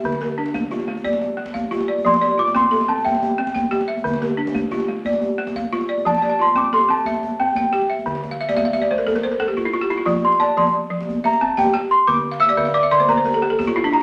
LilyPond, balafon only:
<<
  \new Staff \with { instrumentName = "Balafon" } { \time 12/8 \key f \major \tempo 4. = 120 << { e''8 bes'8 d'4 f'4 d''4. f''4 d''8~ | d''8 d''8 f'4 a'4 e''4. g''4 e''8~ | e''8 bes'8 d'4 f'4 d''4. f''4 d''8~ | d''8 d''8 f'4 a'4 e''4. g''4 e''8~ |
e''8 r1 r4. | f'4 d''4. r4 e''4 g''8 g''4~ | g''8 r1 r4. | } \\ { r1. | r1. | r1. | r1. |
r8. f''16 e''16 d''16 e''16 f''16 e''16 d''16 c''16 bes'16 a'16 bes'16 c''16 bes'16 a'16 g'16 f'16 e'8 g'16 e'16 f'16~ | f'16 r1 r4. r16 | r8. f''16 e''16 d''16 e''16 f''16 d''16 e''16 d''16 c''16 bes'16 c''16 bes'16 a'16 g'16 a'16 g'16 f'16 e'16 d'16 e'8 | } >> }
  \new Staff \with { instrumentName = "Balafon" } { \time 12/8 \key f \major d4 r8 a4 a8 r4 bes4 f'4 | f4 r8 c'4 c'8 r4 c'4 g'4 | d4 r8 a4 a8 r4 bes4 f'4 | f4 r8 c'4 c'8 r4 c'4 g'4 |
d4 r8 a4 a8 r4 bes4 f'4 | f4 r8 f4 f8 r4 c'4 g'4 | d4 r8 d4 d8 r4 bes4 f'4 | }
>>